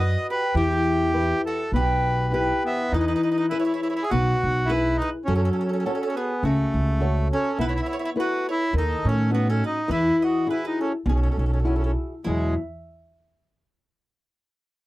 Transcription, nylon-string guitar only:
0.00 0.43 F#4 soft
0.00 0.43 B4 soft
0.00 0.44 D#5 soft
0.55 1.12 E3 medium
1.14 1.61 E4 soft
1.14 1.61 G4 soft
1.14 1.61 B4 soft
1.73 2.31 B2 medium
2.32 2.81 E4 soft
2.32 2.81 G4 soft
2.32 2.81 B4 soft
2.94 3.51 E3 medium
3.52 3.99 E4 soft
3.52 3.99 G#4 soft
3.52 3.99 B4 soft
4.11 4.68 B2 medium
4.69 5.16 E4 soft
4.69 5.16 G#4 soft
4.69 5.17 B4 soft
5.28 5.84 F#3 medium
5.86 6.32 F#4 soft
5.86 6.32 A4 soft
5.86 6.33 C#5 soft
6.43 7.00 C#3 medium
7.01 7.47 F#4 soft
7.01 7.47 A4 soft
7.01 7.48 C#5 soft
7.58 8.15 B3 medium
8.16 8.62 E4 soft
8.16 8.63 A4 soft
8.16 8.63 B4 medium
8.73 9.30 D#3 medium
9.30 9.77 C#4 medium
9.30 9.78 D#4 soft
9.30 9.78 F#4 soft
9.88 10.45 E3 medium
10.47 10.94 E4 soft
10.47 10.94 F#4 soft
10.47 10.94 G#4 soft
11.06 11.63 B2 medium
11.65 12.13 E4 soft
11.65 12.13 F#4 soft
11.65 12.13 G#4 medium
12.25 12.54 E2 medium
12.25 12.54 B2 soft
12.25 12.55 F#3 medium

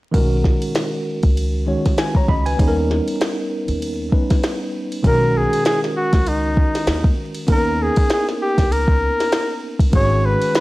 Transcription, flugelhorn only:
5.07 5.38 A#4 medium
5.37 5.66 G#4 medium
5.67 5.80 G#4 medium
5.97 6.29 F#4 medium
6.28 7.19 D#4 medium
7.52 7.84 A#4 medium
7.82 8.12 G#4 medium
8.13 8.26 G#4 medium
8.42 8.73 G4 medium
8.72 9.63 A#4 medium
9.96 10.27 C#5 loud
10.25 10.55 B4 medium
10.56 10.60 B4 medium

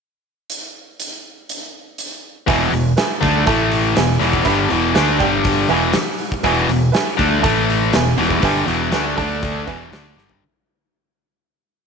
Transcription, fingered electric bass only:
2.48 2.71 E1 medium
2.72 2.95 E1 medium
3.23 3.46 D2 loud
3.47 3.93 A1 medium
3.95 4.19 E1 medium
4.21 4.44 E1 medium
4.46 4.69 G1 medium
4.72 4.94 E1 loud
4.95 5.19 D2 medium
5.20 5.67 G1 medium
5.70 5.93 E1 medium
6.44 6.67 E1 medium
6.69 6.92 E1 medium
7.19 7.42 D2 loud
7.44 7.90 A1 loud
8.18 8.41 E1 medium
8.43 8.66 G1 medium
8.67 8.91 E1 medium
8.93 9.16 D2 medium
9.18 9.64 D2 medium
9.68 9.90 E1 medium
9.92 10.15 D2 medium
10.16 10.40 G1 medium

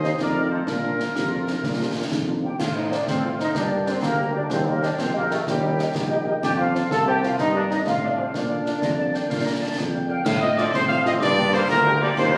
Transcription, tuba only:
0.00 0.12 D#2 medium
0.20 0.60 F2 medium
0.67 1.07 A#2 medium
1.15 1.55 F2 medium
1.63 2.03 A#2 medium
2.11 2.47 F2 medium
2.59 2.99 A2 medium
3.07 3.47 A2 medium
3.55 3.95 G2 medium
4.02 4.43 D2 medium
4.51 4.91 D#2 medium
4.99 5.39 A#1 medium
5.47 5.87 D#2 medium
5.94 6.35 A#1 medium
6.43 6.83 F2 medium
6.91 7.31 C2 medium
7.38 7.78 G2 medium
7.87 8.26 A2 medium
8.35 8.75 A#2 medium
8.82 9.17 F2 medium
9.29 9.69 A#2 medium
9.78 10.18 F2 medium
10.25 10.66 A2 loud
10.73 11.14 A2 medium
11.21 11.61 G2 loud
11.69 12.09 D2 loud
12.18 12.38 D#2 loud

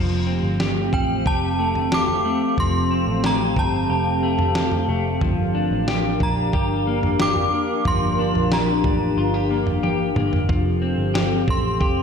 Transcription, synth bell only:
0.94 1.27 G5 medium
1.27 1.94 A5 medium
1.94 2.61 D6 medium
2.60 3.21 C6 medium
3.26 3.59 A#5 medium
3.59 4.86 A5 medium
6.23 7.24 A#5 medium
7.22 7.88 D6 medium
7.88 8.48 C6 medium
8.53 9.47 A#5 medium
11.50 12.03 C6 medium

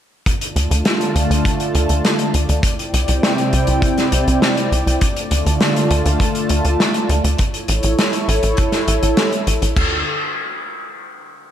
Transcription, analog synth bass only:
0.56 0.68 D2 medium
0.71 0.83 D2 medium
1.15 1.27 D2 medium
1.30 1.42 D2 medium
1.75 1.87 D2 medium
1.90 2.02 D2 medium
2.34 2.46 D2 medium
2.49 2.61 D2 medium
2.94 3.06 C2 medium
3.08 3.20 C2 medium
3.53 3.65 C2 medium
3.68 3.80 C2 medium
4.12 4.24 C2 medium
4.27 4.39 C2 medium
4.72 4.84 C2 medium
4.87 4.99 C2 medium
5.31 5.43 D2 medium
5.46 5.58 D2 medium
5.91 6.03 D2 medium
6.05 6.17 D2 medium
6.50 6.62 D2 medium
6.65 6.77 D2 medium
7.09 7.21 D2 medium
7.24 7.36 D2 medium
7.69 7.81 A1 medium
7.84 7.96 A1 medium
8.28 8.40 A1 loud
8.43 8.55 A1 medium
8.88 9.00 A1 medium
9.03 9.14 A1 medium
9.47 9.59 A1 medium
9.62 9.74 A1 medium
9.77 10.04 D2 medium

